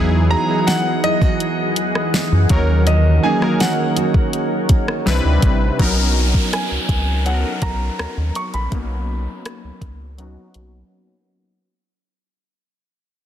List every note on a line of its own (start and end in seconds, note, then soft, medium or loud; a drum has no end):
0.00 0.35 E2 loud
0.00 2.48 E3 medium
0.00 2.50 E3 medium
0.00 0.20 F#3 medium
0.00 0.20 B3 medium
0.00 0.20 D#4 medium
0.00 0.31 D#4 medium
0.00 0.21 E4 medium
0.00 0.32 F#4 medium
0.00 0.21 G#4 loud
0.00 2.48 G#4 medium
0.00 2.48 D#5 medium
0.00 5.02 F#5 medium
0.30 0.43 F#3 medium
0.30 2.12 G#3 medium
0.30 0.43 B3 medium
0.30 0.44 D#4 medium
0.30 0.67 D#4 medium
0.30 0.44 E4 medium
0.30 1.03 F#4 medium
0.30 0.45 G#4 medium
0.30 0.68 A#5 loud
0.48 1.52 F#3 medium
0.48 1.52 B3 medium
0.48 1.53 D#4 medium
0.48 1.53 E4 medium
0.48 1.53 G#4 medium
0.67 3.24 D#4 medium
0.67 1.05 F#5 loud
0.67 snare loud
0.67 closed hi-hat medium
1.04 1.22 E4 medium
1.04 2.46 D#5 loud
1.04 closed hi-hat medium
1.22 2.57 F#4 medium
1.22 kick medium
1.40 closed hi-hat medium
1.76 closed hi-hat medium
1.95 cross-stick medium
2.14 2.57 G#3 medium
2.14 snare loud
2.32 2.46 F#2 loud
2.49 3.19 D#2 loud
2.49 2.86 D#3 medium
2.49 3.09 F#3 medium
2.49 3.09 A#3 medium
2.49 3.09 C#4 medium
2.49 5.04 D#4 medium
2.49 3.09 D#4 medium
2.49 5.04 A#4 medium
2.49 3.10 A#4 medium
2.49 5.04 C#5 medium
2.49 2.88 C#5 medium
2.49 kick loud
2.49 closed hi-hat medium
2.87 5.14 D#3 medium
2.87 3.21 D#5 medium
2.87 closed hi-hat medium
3.23 3.36 F#3 medium
3.23 3.36 A#3 medium
3.23 5.14 A#3 medium
3.23 3.37 C#4 medium
3.23 3.59 C#4 medium
3.23 3.37 D#4 medium
3.23 3.96 F#4 medium
3.23 3.37 G#4 medium
3.23 3.61 G#5 medium
3.41 4.45 F#3 medium
3.41 4.45 A#3 medium
3.41 4.45 C#4 medium
3.41 4.46 D#4 medium
3.41 4.46 A#4 medium
3.41 cross-stick medium
3.60 5.14 C#4 medium
3.60 4.66 F#5 medium
3.60 snare loud
3.60 closed hi-hat medium
3.97 5.14 F#4 medium
3.97 closed hi-hat medium
4.14 kick medium
4.33 closed hi-hat medium
4.69 kick medium
4.69 closed hi-hat medium
4.88 cross-stick medium
5.06 5.20 C2 loud
5.06 5.87 C3 medium
5.06 5.64 G3 loud
5.06 5.65 C4 medium
5.06 5.65 D4 medium
5.06 5.65 E4 medium
5.06 5.66 B4 loud
5.06 snare loud
5.25 5.39 D2 medium
5.42 5.70 A1 loud
5.42 kick medium
5.42 closed hi-hat medium
5.79 6.35 B1 loud
5.79 6.83 F#3 medium
5.79 6.83 B3 medium
5.79 6.83 C#4 medium
5.79 6.84 D#4 medium
5.79 6.84 A#4 medium
5.79 kick loud
5.79 closed hi-hat medium
5.79 downlifter medium
6.34 kick medium
6.53 7.28 G#5 medium
6.53 cross-stick loud
6.53 closed hi-hat medium
6.71 6.78 C#2 soft
6.89 7.44 C#2 medium
6.89 kick medium
6.89 closed hi-hat medium
7.25 8.29 F#3 medium
7.25 8.29 B3 medium
7.25 8.30 C#4 medium
7.25 8.30 D#4 medium
7.25 7.33 A4 medium
7.25 7.64 F#5 medium
7.25 closed hi-hat medium
7.34 8.33 A#4 medium
7.62 7.90 B1 medium
7.62 8.38 A#5 medium
7.62 kick medium
7.62 closed hi-hat medium
7.99 8.07 D#2 soft
7.99 cross-stick loud
8.17 8.31 D#2 medium
8.35 8.41 C#6 loud
8.35 closed hi-hat medium
8.54 8.68 A#1 medium
8.54 10.88 B5 medium
8.54 closed hi-hat soft
8.71 9.27 B1 loud
8.71 9.75 F#3 medium
8.71 9.76 A#3 medium
8.71 9.76 B3 medium
8.71 9.76 C#4 medium
8.71 9.76 D#4 medium
8.71 kick loud
8.71 closed hi-hat medium
9.46 cross-stick loud
9.46 closed hi-hat medium
9.64 9.71 C#2 soft
9.81 10.37 C#2 medium
9.81 kick medium
9.81 closed hi-hat medium
10.18 11.22 F#3 medium
10.18 11.22 B3 medium
10.18 11.22 C#4 medium
10.18 11.23 D#4 medium
10.18 11.23 F#4 medium
10.18 closed hi-hat medium
10.54 10.83 B1 medium
10.54 closed hi-hat medium